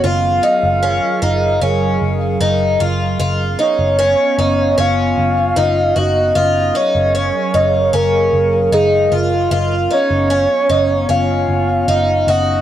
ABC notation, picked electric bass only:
X:1
M:4/4
L:1/16
Q:1/4=76
K:F#
V:1 name="Picked electric bass" clef=bass
F,,,2 z F,,,2 z F,,,2 F,,,2 F,,,2 F,,,2 F,,,2 | F,,,2 z F,,,2 z F,,,2 F,,,2 F,,,2 F,,,2 F,,,2 | F,,,2 z F,,,2 z F,,,2 F,,,2 F,,,2 F,,,2 F,,,2 | F,,,2 z F,,,2 z F,,,2 F,,,2 F,,,2 F,,,2 F,,,2 |]